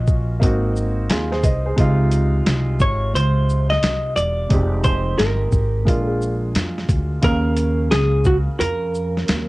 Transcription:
Already playing: upright bass A#1, upright piano A#3 C#4 F4 F#4, hollow-body jazz guitar D#5
0.07 kick, shaker
0.40 upright bass G#1, upright piano A#3 C4 D#4 F#4, kick, closed hi-hat
0.76 shaker
1.10 upright bass D#2, upright piano F4 G#4, snare, closed hi-hat
1.32 upright piano G#4 C5, snare
1.44 upright bass C2, upright piano C5 D#5, kick, closed hi-hat, shaker
1.66 upright piano G#4 C5
1.77 upright bass C#2, upright piano C3 G#3 D#4 F4, kick, closed hi-hat
2.11 closed hi-hat, shaker
2.46 upright bass C2, snare, closed hi-hat
2.80 upright bass G#1, hollow-body jazz guitar C#5, kick, shaker
3.14 upright bass C#2, hollow-body jazz guitar C5, closed hi-hat
3.49 shaker
3.70 hollow-body jazz guitar D#5, snare
3.83 upright bass C2, snare, closed hi-hat
4.16 upright bass E1, hollow-body jazz guitar D5, closed hi-hat, shaker
4.49 upright bass F1, upright piano G#3 C4 D#4 G4, kick, closed hi-hat
4.84 hollow-body jazz guitar C5, kick, closed hi-hat, shaker
5.18 upright bass G1, hollow-body jazz guitar A#4, snare, closed hi-hat
5.52 upright bass G#1, kick, shaker
5.85 upright bass A#1, upright piano G#3 A#3 D4 F4, kick, closed hi-hat
6.08 hollow-body jazz guitar G#4
6.22 shaker
6.55 upright bass F2, snare, closed hi-hat
6.78 snare
6.89 upright bass D2, kick, closed hi-hat, shaker
7.22 upright bass D#2, upright piano C#3 A#3 C#4 F5, hollow-body jazz guitar A#4, kick, closed hi-hat
7.57 closed hi-hat, shaker
7.91 upright bass C#2, hollow-body jazz guitar G#4, snare, closed hi-hat
8.24 hollow-body jazz guitar F#4, kick, shaker
8.48 muted upright bass stroke
8.60 upright bass F2, hollow-body jazz guitar A#4, closed hi-hat
8.95 shaker
9.17 snare
9.28 upright bass D#2, snare, closed hi-hat

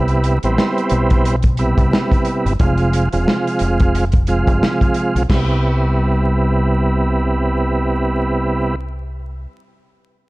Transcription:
Already playing: fingered electric bass C2, tonewheel organ C3 G3 B3 E4
0.08 closed hi-hat
0.24 closed hi-hat
0.43 fingered electric bass A1, tonewheel organ G3 B3 C4 E4, closed hi-hat
0.58 snare
0.78 closed hi-hat
0.90 fingered electric bass B1, closed hi-hat
1.10 kick, closed hi-hat
1.25 closed hi-hat
1.42 kick, closed hi-hat
1.57 tonewheel organ C3 G3 B3 E4, closed hi-hat
1.78 fingered electric bass C2, kick, closed hi-hat
1.93 snare
2.12 kick, closed hi-hat
2.25 closed hi-hat
2.46 fingered electric bass G1, closed hi-hat
2.60 fingered electric bass F1, tonewheel organ C3 F3 G#3 F4, kick, closed hi-hat
2.78 closed hi-hat
2.93 closed hi-hat
3.12 fingered electric bass E1, tonewheel organ C3 F3 G#3 F4, closed hi-hat
3.28 snare
3.47 closed hi-hat
3.59 fingered electric bass F1, closed hi-hat
3.80 kick, closed hi-hat
3.95 closed hi-hat
4.12 kick, closed hi-hat
4.27 tonewheel organ C3 F3 G#3 F4, closed hi-hat
4.47 fingered electric bass G1, kick, closed hi-hat
4.63 snare
4.81 kick, closed hi-hat
4.94 closed hi-hat
5.15 fingered electric bass B1, closed hi-hat
5.29 fingered electric bass C2, tonewheel organ C3 G3 B3 E4, kick, snare, crash

